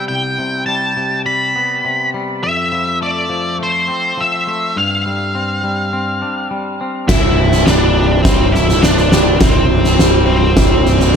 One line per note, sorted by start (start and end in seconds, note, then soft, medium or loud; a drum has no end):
0.00 0.38 C3 soft
0.00 0.67 G3 soft
0.00 0.68 B3 soft
0.08 1.55 C2 soft
0.08 0.63 G5 medium
0.39 0.96 C3 soft
0.66 1.25 G3 soft
0.66 1.21 A5 medium
0.97 1.83 C3 soft
1.26 2.13 G3 soft
1.26 2.10 B5 medium
1.56 2.43 B3 soft
1.85 2.43 C3 soft
2.14 2.43 G3 soft
2.43 3.89 F2 soft
2.43 2.98 E5 medium
2.72 3.28 F3 soft
3.01 3.58 A3 soft
3.01 3.56 D5 soft
3.29 4.16 F3 soft
3.59 4.46 A3 soft
3.63 4.21 C5 medium
3.88 5.35 C4 soft
4.17 4.76 F3 soft
4.17 4.78 E5 medium
4.47 4.76 A3 soft
4.76 6.22 G2 soft
4.76 6.48 F5 medium
5.06 5.62 G3 soft
5.35 5.92 C4 soft
5.64 6.50 G3 soft
5.93 6.80 C4 soft
6.22 7.09 D4 soft
6.51 7.09 G3 soft
6.81 7.09 C4 soft
7.08 9.37 C1 medium
7.08 8.54 C2 medium
7.08 7.68 E4 medium
7.08 kick medium
7.08 snare medium
7.08 crash medium
7.40 7.96 C3 medium
7.52 snare soft
7.66 8.24 G3 soft
7.66 8.22 D4 medium
7.66 snare medium
7.98 8.82 C3 medium
8.23 9.12 G3 soft
8.23 8.54 C4 medium
8.23 kick medium
8.23 snare medium
8.52 8.83 E4 medium
8.52 snare soft
8.69 snare soft
8.82 9.69 C3 soft
8.82 9.40 D4 medium
8.82 snare medium
8.97 snare soft
9.12 9.98 G3 medium
9.12 snare medium
9.40 11.16 C1 medium
9.40 10.86 C2 medium
9.40 10.25 C4 medium
9.40 kick medium
9.40 snare medium
9.70 10.28 C3 soft
9.84 snare soft
9.99 10.56 G3 medium
9.99 snare medium
10.26 11.14 C3 soft
10.26 11.16 C4 medium
10.57 11.16 G3 medium
10.57 kick medium
10.57 snare medium
10.86 snare soft
11.00 snare soft